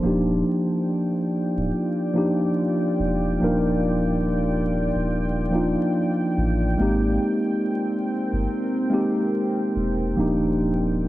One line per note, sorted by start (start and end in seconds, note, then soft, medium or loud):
0.03 0.42 D#1 loud
0.03 1.19 F3 medium
0.03 1.20 A#3 medium
0.03 1.20 D4 medium
0.03 1.21 D#4 medium
0.03 6.75 F4 medium
0.03 1.21 G4 medium
0.03 6.75 D5 medium
0.03 11.08 G5 medium
1.57 1.71 D1 medium
2.14 2.99 F3 medium
2.14 2.99 A#3 medium
2.14 3.00 D4 medium
2.14 3.01 D#4 medium
2.18 3.01 G4 medium
2.99 3.38 E1 medium
3.40 4.91 D#1 medium
3.40 4.57 F3 medium
3.40 4.58 A#3 medium
3.40 4.58 D4 medium
3.40 4.59 D#4 medium
3.44 4.59 A#4 medium
4.95 5.75 D#1 medium
5.51 6.37 F3 medium
5.51 6.37 A#3 medium
5.51 6.38 D4 medium
5.51 6.38 D#4 medium
5.56 6.39 F4 medium
6.37 6.76 A1 medium
6.78 7.18 G#1 loud
6.78 7.95 G#3 medium
6.78 7.96 A#3 medium
6.78 10.14 C4 medium
6.78 7.96 C4 medium
6.78 7.97 D#4 medium
6.78 10.14 A#4 medium
6.82 7.97 G4 medium
8.33 8.47 G1 medium
8.90 9.75 G#3 medium
8.90 9.76 A#3 medium
8.90 9.76 C4 medium
8.90 9.77 D#4 medium
8.90 9.77 G4 medium
9.75 10.14 E1 medium
10.16 11.08 D#1 loud
10.16 11.08 F3 medium
10.16 11.08 A#3 medium
10.16 11.08 D4 medium
10.16 11.08 D#4 medium
10.16 11.08 F4 medium
10.16 11.08 D5 medium
10.21 11.08 G4 medium